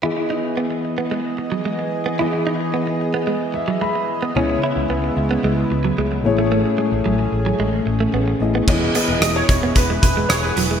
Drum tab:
CC |--------|--------|--------|--------|
HH |--------|--------|--------|--------|
SD |--------|--------|--------|--------|
BD |--------|--------|--------|--------|

CC |x-------|
HH |-xxxxxxx|
SD |--r---r-|
BD |o--ooo--|